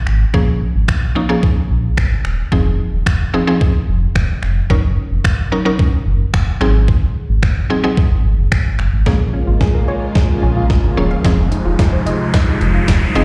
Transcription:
0.07 sub bass G#1, finger snap
0.34 sub bass A#1, synth pluck F3 A#3 C#4 G#4, kick
0.75 sub bass G#1
0.88 sub bass A#1, finger snap, kick
1.15 synth pluck F3 A#3 C#4 D#4
1.29 synth pluck F3 A#3 C#4 G#4
1.43 kick
1.70 sub bass A#1
1.97 sub bass G#1, finger snap, kick
2.25 sub bass D#1, finger snap
2.52 sub bass F1, synth pluck F3 C4 D#4 G#4, kick
2.93 sub bass D#1
3.06 sub bass F1, finger snap, kick
3.33 synth pluck F3 C4 D#4 G#4
3.47 synth pluck F3 C4 D#4 G#4
3.61 kick
3.88 sub bass F1
4.15 sub bass D#1, finger snap, kick
4.43 sub bass F1, finger snap
4.70 sub bass F#1, synth pluck F#3 C#4 D#4 A#4, kick
5.11 sub bass F1
5.25 sub bass F#1, finger snap, kick
5.52 synth pluck F#3 C#4 D#4 A#4
5.65 synth pluck F#3 C#4 D#4 A#4
5.79 kick
6.06 sub bass F#1
6.34 sub bass F1, finger snap, kick
6.61 sub bass G#1, synth pluck F#3 C4 D#4 G#4, finger snap
6.88 kick
7.29 sub bass G#1
7.43 sub bass F#1, finger snap, kick
7.70 synth pluck F#3 C4 D#4 G#4
7.84 synth pluck F#3 C4 D#4 G#4
7.97 kick
8.11 sub bass G#1
8.25 sub bass G#1
8.38 sub bass F#1
8.52 finger snap, kick
8.65 sub bass G#1
8.79 sub bass F#1, finger snap
8.93 sub bass G#1
9.06 sub bass A#1, string machine C#3 G#3 A#3 F4, synth pluck F3 G#3 A#3 C#4 G#4, kick, snare, riser
9.20 synth pluck A#3
9.34 synth pluck C#4
9.47 sub bass G#1, synth pluck F4
9.61 sub bass A#1, synth pluck G#4, kick, snare
9.74 synth pluck A#4
9.88 synth pluck C#5
10.15 synth pluck G#3, kick, snare
10.43 sub bass A#1, synth pluck C#4
10.56 synth pluck F4
10.70 sub bass G#1, kick, snare
10.97 sub bass D#1, synth pluck F3 A#3 C#4 G#4 C#5
11.11 synth pluck F5
11.24 sub bass F1, string machine C3 F3 G#3 D#4, synth pluck F3 G#3 C4 D#4 G#4, kick, snare, closed hi-hat
11.38 synth pluck C4
11.52 synth pluck D#4, closed hi-hat
11.65 sub bass D#1, synth pluck F4
11.79 sub bass F1, synth pluck G#4, kick, snare, closed hi-hat
11.93 synth pluck C5
12.06 synth pluck D#5, closed hi-hat
12.34 synth pluck G#3, kick, snare, closed hi-hat
12.61 sub bass F1, synth pluck D#4, closed hi-hat
12.74 synth pluck F4
12.88 sub bass D#1, kick, snare, closed hi-hat
13.15 sub bass F1, synth pluck F3 C4 D#4 G#4 D#5, closed hi-hat

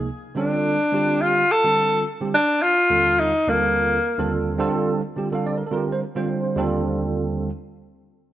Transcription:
0.35 tine electric piano D3 G3 C4 F4 A4, tenor saxophone D4
0.92 tine electric piano D3 G3 C4 F4 G4
1.22 tenor saxophone F4
1.51 tenor saxophone A4
1.63 tine electric piano D3 G3 C4 F4 A4
2.20 tine electric piano D3 G3 C4 F4 G4
2.34 tenor saxophone D4
2.62 tenor saxophone F4
2.89 tine electric piano D#2 D3 G3 C4 F4 A4
3.20 tenor saxophone D#4
3.47 tine electric piano D#2 D3 G3 C4 F4 A4, tenor saxophone A#3
4.17 tine electric piano D#2 D3 G3 C4 F4 A4
4.58 tine electric piano D3 G3 C4 F4 A4
5.16 tine electric piano D3 G3 C4 F4 G4
5.31 tine electric piano D3 G3 C4 F4 A4 F5
5.46 tine electric piano D5
5.58 tine electric piano A#4
5.67 tine electric piano A4
5.71 tine electric piano D3 G3 C4 F4 A#4
5.77 tine electric piano G4
5.92 tine electric piano C5
6.15 tine electric piano D3 G3 C4 F4 C5
6.56 tine electric piano D#2 D3 G3 C4 F4 A4

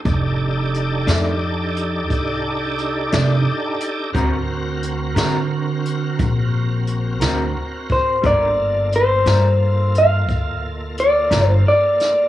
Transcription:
Already playing: clean electric guitar A5
0.05 upright bass F1, tonewheel organ D4 D#4 G4 A4, kick, closed hi-hat
0.74 clean electric guitar G5, closed hi-hat
1.07 upright bass F2, clean electric guitar F2 D#3 A3 D4, snare, closed hi-hat
1.76 closed hi-hat
2.10 upright bass C2, kick, closed hi-hat
2.78 closed hi-hat
3.12 upright bass F1, clean electric guitar F2 D#3 A3 D4, snare, closed hi-hat
3.80 closed hi-hat
4.13 upright bass D2, clean electric guitar D3 C4 F#4 A#4, tonewheel organ C4 F#4 A#4, kick, closed hi-hat
4.83 closed hi-hat
5.15 upright bass D3, clean electric guitar D3 C4 F#4 A#4, snare, closed hi-hat
5.85 closed hi-hat
6.19 upright bass A#1, kick, closed hi-hat
6.87 closed hi-hat
7.20 upright bass D2, clean electric guitar D3 C4 F#4 A#4, snare, closed hi-hat
7.89 clean electric guitar C5, kick, closed hi-hat
8.22 upright bass G1, clean electric guitar G3 D4 F4 A#4, tonewheel organ A#3 F4 A4, kick, closed hi-hat
8.26 clean electric guitar D5
8.92 clean electric guitar C5, closed hi-hat
9.26 upright bass G2, clean electric guitar G3 D4 F4 A#4, snare, closed hi-hat
9.95 clean electric guitar F5, closed hi-hat
10.29 upright bass D2, kick, closed hi-hat
10.98 clean electric guitar D5, closed hi-hat
11.30 upright bass G1, clean electric guitar G3 D4 F4 A#4, snare, closed hi-hat
11.47 clean electric guitar C5
11.68 clean electric guitar D5
12.00 snare, closed hi-hat

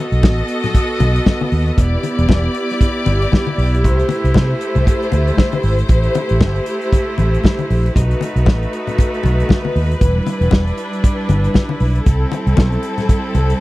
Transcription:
Already playing: string section B3 F#4 A4 D#5
0.12 fingered electric bass B1, closed hi-hat
0.23 fingered electric bass A1, kick, snare, high conga
0.38 closed hi-hat
0.48 closed hi-hat
0.63 snare, closed hi-hat, low conga
0.75 kick, closed hi-hat, muted conga
1.00 fingered electric bass B1, closed hi-hat, muted conga
1.16 closed hi-hat
1.26 kick, snare, high conga
1.41 high conga
1.52 fingered electric bass D#2, open hi-hat
1.68 closed hi-hat
1.78 fingered electric bass E1, string section E4 G4 D5, kick, closed hi-hat
2.03 closed hi-hat, muted conga
2.18 fingered electric bass E1, closed hi-hat
2.29 kick, snare, high conga
2.55 closed hi-hat
2.70 snare, closed hi-hat
2.81 kick, closed hi-hat
3.06 fingered electric bass G1, closed hi-hat, muted conga
3.22 closed hi-hat
3.32 kick, snare, high conga
3.47 high conga
3.58 fingered electric bass B1, open hi-hat
3.75 closed hi-hat
3.84 fingered electric bass C2, string section A3 C5, kick, closed hi-hat
3.99 closed hi-hat
4.09 closed hi-hat, muted conga
4.24 fingered electric bass C2, closed hi-hat
4.34 fingered electric bass C3, kick, snare, high conga
4.61 closed hi-hat
4.75 fingered electric bass C2, closed hi-hat, low conga
4.87 kick, closed hi-hat
5.03 closed hi-hat
5.12 fingered electric bass D2, closed hi-hat, muted conga
5.28 closed hi-hat
5.37 kick, snare, high conga
5.52 closed hi-hat, high conga
5.63 fingered electric bass G#1, open hi-hat
5.79 closed hi-hat
5.89 fingered electric bass A1, string section A3 E4 G4, kick, closed hi-hat
6.03 closed hi-hat
6.15 closed hi-hat, muted conga
6.29 fingered electric bass A1, closed hi-hat
6.41 fingered electric bass G1, kick, snare, high conga
6.56 closed hi-hat
6.66 closed hi-hat
6.81 closed hi-hat
6.93 kick, closed hi-hat, muted conga
7.18 fingered electric bass A1, closed hi-hat, muted conga
7.34 closed hi-hat
7.44 kick, snare, high conga
7.59 closed hi-hat, high conga
7.70 fingered electric bass A#1, open hi-hat
7.86 closed hi-hat
7.95 fingered electric bass B1, string section A3 D#4 F#4 B4, kick, closed hi-hat
8.11 closed hi-hat
8.21 closed hi-hat, muted conga
8.36 fingered electric bass B1, closed hi-hat
8.46 fingered electric bass A1, kick, snare, high conga
8.63 closed hi-hat
8.73 closed hi-hat
8.87 closed hi-hat, low conga
8.98 kick, closed hi-hat, muted conga
9.14 closed hi-hat
9.23 fingered electric bass B1, closed hi-hat, muted conga
9.40 closed hi-hat
9.49 kick, snare, high conga
9.65 high conga
9.76 fingered electric bass D#2, open hi-hat
9.91 closed hi-hat
10.01 fingered electric bass E1, string section G3 D4 E4, kick, closed hi-hat
10.27 closed hi-hat, muted conga
10.41 fingered electric bass E1, closed hi-hat
10.51 fingered electric bass E1, kick, snare, high conga
10.67 closed hi-hat
10.78 closed hi-hat
10.93 closed hi-hat
11.04 kick, closed hi-hat
11.29 fingered electric bass G1, closed hi-hat, muted conga
11.44 closed hi-hat
11.54 kick, snare, high conga
11.69 high conga
11.80 fingered electric bass B1, open hi-hat
11.95 closed hi-hat
12.06 fingered electric bass C2, string section G3 C4 A4, kick, closed hi-hat
12.32 closed hi-hat, muted conga
12.47 fingered electric bass C2, closed hi-hat
12.57 fingered electric bass B1, kick, snare, high conga
12.72 closed hi-hat
12.83 closed hi-hat
12.98 snare, closed hi-hat, low conga
13.09 kick, closed hi-hat, muted conga
13.35 fingered electric bass C2, closed hi-hat, muted conga
13.50 closed hi-hat

